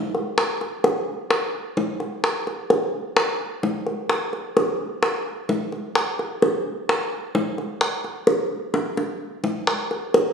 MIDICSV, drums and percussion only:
0, 0, Header, 1, 2, 480
1, 0, Start_track
1, 0, Tempo, 464396
1, 390, Time_signature, 4, 2, 24, 8
1, 10678, End_track
2, 0, Start_track
2, 0, Title_t, "Drums"
2, 151, Note_on_c, 9, 60, 36
2, 254, Note_off_c, 9, 60, 0
2, 390, Note_on_c, 9, 60, 64
2, 493, Note_off_c, 9, 60, 0
2, 632, Note_on_c, 9, 60, 36
2, 736, Note_off_c, 9, 60, 0
2, 870, Note_on_c, 9, 60, 59
2, 973, Note_off_c, 9, 60, 0
2, 1349, Note_on_c, 9, 60, 64
2, 1452, Note_off_c, 9, 60, 0
2, 1830, Note_on_c, 9, 60, 38
2, 1830, Note_on_c, 9, 61, 77
2, 1933, Note_off_c, 9, 60, 0
2, 1933, Note_off_c, 9, 61, 0
2, 2068, Note_on_c, 9, 60, 35
2, 2172, Note_off_c, 9, 60, 0
2, 2313, Note_on_c, 9, 60, 62
2, 2416, Note_off_c, 9, 60, 0
2, 2554, Note_on_c, 9, 60, 35
2, 2658, Note_off_c, 9, 60, 0
2, 2792, Note_on_c, 9, 60, 58
2, 2896, Note_off_c, 9, 60, 0
2, 3272, Note_on_c, 9, 60, 71
2, 3375, Note_off_c, 9, 60, 0
2, 3754, Note_on_c, 9, 60, 30
2, 3754, Note_on_c, 9, 61, 85
2, 3858, Note_off_c, 9, 60, 0
2, 3858, Note_off_c, 9, 61, 0
2, 3995, Note_on_c, 9, 60, 33
2, 4098, Note_off_c, 9, 60, 0
2, 4233, Note_on_c, 9, 60, 59
2, 4336, Note_off_c, 9, 60, 0
2, 4474, Note_on_c, 9, 60, 33
2, 4578, Note_off_c, 9, 60, 0
2, 4720, Note_on_c, 9, 60, 67
2, 4823, Note_off_c, 9, 60, 0
2, 5195, Note_on_c, 9, 60, 63
2, 5298, Note_off_c, 9, 60, 0
2, 5675, Note_on_c, 9, 60, 39
2, 5675, Note_on_c, 9, 61, 84
2, 5779, Note_off_c, 9, 60, 0
2, 5779, Note_off_c, 9, 61, 0
2, 5915, Note_on_c, 9, 60, 33
2, 6019, Note_off_c, 9, 60, 0
2, 6154, Note_on_c, 9, 60, 66
2, 6258, Note_off_c, 9, 60, 0
2, 6401, Note_on_c, 9, 60, 36
2, 6504, Note_off_c, 9, 60, 0
2, 6640, Note_on_c, 9, 60, 64
2, 6743, Note_off_c, 9, 60, 0
2, 7124, Note_on_c, 9, 60, 67
2, 7228, Note_off_c, 9, 60, 0
2, 7595, Note_on_c, 9, 60, 33
2, 7595, Note_on_c, 9, 61, 93
2, 7699, Note_off_c, 9, 60, 0
2, 7699, Note_off_c, 9, 61, 0
2, 7836, Note_on_c, 9, 60, 36
2, 7940, Note_off_c, 9, 60, 0
2, 8072, Note_on_c, 9, 60, 60
2, 8175, Note_off_c, 9, 60, 0
2, 8314, Note_on_c, 9, 60, 35
2, 8417, Note_off_c, 9, 60, 0
2, 8548, Note_on_c, 9, 60, 65
2, 8652, Note_off_c, 9, 60, 0
2, 9032, Note_on_c, 9, 60, 94
2, 9135, Note_off_c, 9, 60, 0
2, 9276, Note_on_c, 9, 60, 79
2, 9379, Note_off_c, 9, 60, 0
2, 9754, Note_on_c, 9, 61, 78
2, 9857, Note_off_c, 9, 61, 0
2, 9998, Note_on_c, 9, 60, 61
2, 10101, Note_off_c, 9, 60, 0
2, 10242, Note_on_c, 9, 60, 34
2, 10346, Note_off_c, 9, 60, 0
2, 10484, Note_on_c, 9, 60, 66
2, 10587, Note_off_c, 9, 60, 0
2, 10678, End_track
0, 0, End_of_file